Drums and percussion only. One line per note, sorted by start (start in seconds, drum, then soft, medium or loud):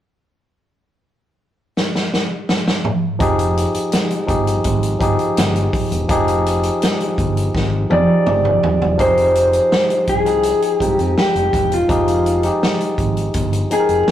1.77 snare medium
1.95 snare medium
2.14 snare medium
2.49 snare medium
2.68 snare medium
2.85 mid tom medium
3.20 kick loud
3.20 closed hi-hat medium
3.39 closed hi-hat medium
3.57 closed hi-hat medium
3.74 closed hi-hat soft
3.92 snare medium
3.92 closed hi-hat medium
4.10 closed hi-hat soft
4.28 kick medium
4.28 closed hi-hat medium
4.47 closed hi-hat soft
4.64 kick medium
4.64 closed hi-hat medium
4.83 closed hi-hat soft
5.01 kick medium
5.01 closed hi-hat medium
5.19 closed hi-hat soft
5.37 snare loud
5.37 closed hi-hat medium
5.55 closed hi-hat soft
5.73 kick medium
5.73 open hi-hat medium
5.92 closed hi-hat medium
6.09 kick loud
6.09 closed hi-hat medium
6.28 closed hi-hat medium
6.46 closed hi-hat medium
6.63 closed hi-hat medium
6.82 snare loud
6.82 closed hi-hat medium
7.00 closed hi-hat soft
7.18 kick medium
7.18 closed hi-hat medium
7.37 closed hi-hat soft
7.55 kick medium
7.55 snare soft
7.90 high tom medium
8.27 mid tom medium
8.45 mid tom medium
8.63 floor tom medium
8.82 floor tom medium
8.99 kick medium
8.99 closed hi-hat medium
9.17 closed hi-hat medium
9.35 closed hi-hat medium
9.53 closed hi-hat soft
9.72 snare medium
9.90 closed hi-hat soft
10.07 kick medium
10.07 closed hi-hat medium
10.26 closed hi-hat soft
10.43 closed hi-hat medium
10.62 closed hi-hat soft
10.80 kick medium
10.80 closed hi-hat medium
10.99 closed hi-hat soft
11.18 snare medium
11.36 closed hi-hat soft
11.53 kick medium
11.53 closed hi-hat medium
11.72 closed hi-hat soft
11.89 kick loud
11.89 closed hi-hat medium
12.08 closed hi-hat medium
12.26 closed hi-hat medium
12.43 closed hi-hat soft
12.63 snare medium
12.81 closed hi-hat soft
12.98 kick medium
12.98 closed hi-hat medium
13.17 closed hi-hat soft
13.34 kick medium
13.34 closed hi-hat medium
13.53 closed hi-hat soft
13.71 closed hi-hat medium
13.89 closed hi-hat soft
14.08 snare loud